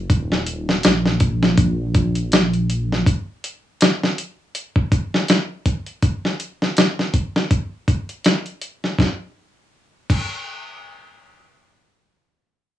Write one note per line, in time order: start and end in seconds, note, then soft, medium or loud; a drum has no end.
0.10 0.81 D#1 loud
0.10 kick loud
0.10 closed hi-hat medium
0.32 snare soft
0.46 closed hi-hat medium
0.69 snare soft
0.83 3.04 A#1 medium
0.83 snare loud
0.83 closed hi-hat medium
1.05 snare soft
1.20 kick medium
1.20 closed hi-hat medium
1.43 snare medium
1.57 kick loud
1.57 closed hi-hat medium
1.94 kick medium
1.94 closed hi-hat medium
2.15 closed hi-hat soft
2.32 snare loud
2.32 closed hi-hat medium
2.54 closed hi-hat soft
2.70 closed hi-hat medium
2.92 snare soft
3.06 kick loud
3.06 closed hi-hat medium
3.44 closed hi-hat medium
3.81 snare loud
3.81 closed hi-hat medium
4.03 snare soft
4.18 closed hi-hat medium
4.55 closed hi-hat medium
4.76 kick medium
4.92 kick medium
4.92 closed hi-hat medium
5.14 snare soft
5.28 snare loud
5.28 closed hi-hat medium
5.66 kick medium
5.66 closed hi-hat medium
5.86 closed hi-hat soft
6.02 kick loud
6.02 closed hi-hat medium
6.25 snare soft
6.40 closed hi-hat medium
6.62 snare soft
6.77 snare loud
6.77 closed hi-hat medium
6.99 snare soft
7.14 kick medium
7.14 closed hi-hat medium
7.36 snare medium
7.51 kick loud
7.51 closed hi-hat medium
7.88 kick medium
7.88 closed hi-hat medium
8.09 closed hi-hat soft
8.24 snare loud
8.24 closed hi-hat medium
8.46 closed hi-hat soft
8.62 closed hi-hat medium
8.84 snare soft
8.99 kick medium
8.99 snare medium
10.10 kick medium
10.10 crash medium